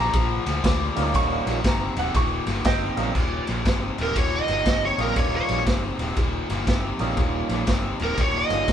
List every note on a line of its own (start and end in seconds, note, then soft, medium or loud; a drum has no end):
0.00 0.12 A#2 medium
0.00 0.12 G3 medium
0.00 0.47 A#5 loud
0.13 0.37 A#1 medium
0.13 0.43 A#2 medium
0.13 0.43 F3 loud
0.13 kick medium
0.13 snare soft
0.13 ride medium
0.46 0.59 D2 medium
0.46 0.62 A#2 medium
0.46 0.62 F3 medium
0.46 snare soft
0.46 ride medium
0.64 0.88 D2 medium
0.64 0.93 A#2 medium
0.64 0.94 G3 medium
0.64 kick medium
0.64 snare loud
0.64 ride medium
0.96 1.16 D2 loud
0.96 1.13 A#2 medium
0.96 1.61 G3 medium
0.96 1.13 G3 medium
0.96 1.61 A#3 medium
0.96 1.61 C#4 medium
0.96 1.61 D#4 medium
0.96 1.61 F4 medium
0.96 snare soft
0.96 ride medium
1.14 1.43 D#2 medium
1.14 1.44 A#2 medium
1.14 1.64 C#6 loud
1.14 kick medium
1.14 snare soft
1.14 ride medium
1.46 1.59 A#1 medium
1.46 1.62 D#2 medium
1.46 1.63 A#2 medium
1.46 snare soft
1.46 ride medium
1.64 1.88 G1 medium
1.64 1.93 D#2 medium
1.64 1.94 C3 medium
1.64 1.97 A#5 medium
1.64 kick medium
1.64 snare loud
1.64 ride medium
1.96 2.10 D#1 loud
1.96 2.13 D#2 medium
1.96 2.13 C3 medium
1.96 2.15 F#5 medium
1.96 snare soft
1.96 ride medium
2.14 2.38 D#1 loud
2.14 2.44 D#2 medium
2.14 2.44 A#2 loud
2.14 2.64 C#6 medium
2.14 kick medium
2.14 snare soft
2.14 ride medium
2.46 2.60 G1 medium
2.46 2.63 D#2 medium
2.46 2.63 A#2 medium
2.46 snare soft
2.46 ride medium
2.64 2.88 G1 medium
2.64 2.94 D#2 medium
2.64 2.94 C3 medium
2.64 3.12 D#5 medium
2.64 3.15 G5 medium
2.64 kick medium
2.64 snare loud
2.64 ride medium
2.96 3.10 A#1 medium
2.96 3.13 D#2 medium
2.96 3.14 C3 medium
2.96 3.13 G3 medium
2.96 3.13 A#3 medium
2.96 3.13 C#4 medium
2.96 3.13 D#4 medium
2.96 3.13 F4 medium
2.96 snare soft
2.96 ride medium
3.15 3.38 D#1 medium
3.15 3.44 D#2 medium
3.15 3.45 A#2 medium
3.15 kick medium
3.15 snare soft
3.15 crash medium
3.47 3.61 A#1 medium
3.47 3.64 D#2 medium
3.47 3.64 A#2 medium
3.47 snare soft
3.47 ride medium
3.65 3.89 G1 medium
3.65 3.94 D#2 medium
3.65 3.95 C3 medium
3.65 kick medium
3.65 snare loud
3.65 ride medium
3.97 4.11 D#1 medium
3.97 4.14 D#2 medium
3.97 4.14 C3 medium
3.97 snare soft
3.97 ride medium
4.03 4.17 A#4 medium
4.15 4.39 D#1 medium
4.15 4.45 D#2 medium
4.15 4.45 A#2 medium
4.15 4.33 C#5 medium
4.15 kick medium
4.15 snare soft
4.15 ride medium
4.35 4.83 D#5 medium
4.48 4.61 G1 medium
4.48 4.64 D#2 medium
4.48 4.64 A#2 medium
4.48 snare soft
4.48 ride medium
4.66 4.90 G1 medium
4.66 4.95 D#2 medium
4.66 4.96 C3 medium
4.66 kick medium
4.66 snare loud
4.66 ride medium
4.85 5.00 C#5 medium
4.98 5.11 A#1 medium
4.98 5.14 D#2 medium
4.98 5.14 C3 medium
4.98 5.63 G3 medium
4.98 5.63 A#3 medium
4.98 5.63 C#4 medium
4.98 5.63 D#4 medium
4.98 5.63 F4 medium
4.98 5.17 A#4 medium
4.98 snare soft
4.98 ride medium
5.16 5.40 D#1 medium
5.16 5.45 D#2 medium
5.16 5.46 A#2 medium
5.16 5.33 C#5 medium
5.16 kick medium
5.16 snare soft
5.16 ride medium
5.36 5.61 C#5 medium
5.49 5.62 A#1 medium
5.49 5.65 D#2 medium
5.49 5.65 A#2 medium
5.49 snare soft
5.49 ride medium
5.66 5.90 G1 medium
5.66 5.96 D#2 medium
5.66 5.96 C3 medium
5.66 kick medium
5.66 snare loud
5.66 ride medium
5.99 6.12 D#1 medium
5.99 6.15 D#2 medium
5.99 6.15 C3 medium
5.99 snare soft
5.99 ride medium
6.16 6.41 D#1 medium
6.16 6.46 D#2 medium
6.16 6.46 A#2 medium
6.16 kick medium
6.16 snare soft
6.16 ride medium
6.49 6.62 G1 medium
6.49 6.65 D#2 medium
6.49 6.66 A#2 medium
6.49 snare soft
6.49 ride medium
6.67 6.91 G1 medium
6.67 6.96 D#2 medium
6.67 6.97 C3 medium
6.67 kick medium
6.67 snare loud
6.67 ride medium
6.99 7.12 A#1 medium
6.99 7.16 D#2 medium
6.99 7.16 C3 medium
6.99 7.64 G3 medium
6.99 7.64 A#3 medium
6.99 7.65 C#4 medium
6.99 7.65 D#4 medium
6.99 7.65 F4 medium
6.99 snare soft
6.99 ride medium
7.17 7.41 D#1 medium
7.17 7.47 D#2 medium
7.17 7.47 A#2 medium
7.17 kick medium
7.17 snare soft
7.17 ride medium
7.49 7.62 A#1 medium
7.49 7.66 D#2 medium
7.49 7.66 A#2 medium
7.49 snare soft
7.49 ride medium
7.67 7.91 G1 medium
7.67 7.97 D#2 medium
7.67 7.97 C3 medium
7.67 kick medium
7.67 snare loud
7.67 ride medium
7.99 8.13 D#1 medium
7.99 8.16 D#2 medium
7.99 8.17 C3 medium
7.99 snare soft
7.99 ride medium
8.04 8.21 A#4 medium
8.17 8.41 D#1 medium
8.17 8.47 D#2 medium
8.17 8.47 A#2 medium
8.17 8.36 C#5 medium
8.17 kick medium
8.17 snare soft
8.17 ride medium
8.38 8.73 D#5 medium
8.49 8.63 G1 medium
8.49 8.66 D#2 medium
8.49 8.67 A#2 medium
8.49 8.73 G3 medium
8.49 8.73 A#3 medium
8.49 8.73 C#4 medium
8.49 8.73 D#4 medium
8.49 8.73 F4 medium
8.49 snare soft
8.49 ride medium
8.68 8.73 G1 medium
8.68 8.73 D#2 medium
8.68 8.73 C3 medium
8.68 kick medium
8.68 snare loud
8.68 ride medium